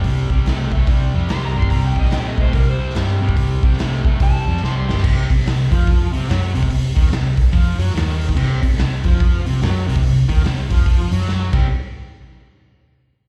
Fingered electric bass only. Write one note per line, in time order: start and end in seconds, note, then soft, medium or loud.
0.04 0.29 C2 medium
0.30 0.45 C2 medium
0.46 0.71 C2 medium
0.71 0.87 C2 medium
0.87 1.12 C2 medium
1.14 1.29 F2 medium
1.30 1.54 C2 loud
1.55 1.70 G1 medium
1.71 1.95 C2 loud
1.96 2.11 C2 medium
2.12 2.52 A#2 medium
2.53 2.93 C2 medium
2.95 3.35 G2 medium
3.37 3.62 C2 loud
3.63 3.78 C2 medium
3.80 4.04 C2 medium
4.05 4.19 C2 medium
4.20 4.45 C2 medium
4.47 4.62 F2 medium
4.63 4.87 C2 loud
4.90 5.03 G1 medium
5.04 5.28 C2 medium
5.30 5.45 C2 medium
5.47 5.70 C2 medium
5.72 6.11 F2 medium
6.15 6.29 C2 medium
6.29 6.54 F#2 loud
6.56 6.70 C2 loud
6.70 6.95 C2 medium
6.96 7.11 D#2 loud
7.12 7.36 C2 medium
7.53 7.78 F2 medium
7.78 7.94 F#2 loud
7.95 8.34 D#2 loud
8.37 8.61 C2 medium
8.63 8.77 C2 medium
8.79 9.03 C2 medium
9.05 9.43 F2 loud
9.47 9.61 C2 loud
9.62 9.86 F#2 loud
9.88 10.03 C2 loud
10.04 10.28 C2 medium
10.29 10.44 D#2 loud
10.46 10.70 C2 medium
10.71 11.09 F2 medium
11.11 11.50 F#2 loud
11.53 11.68 C2 loud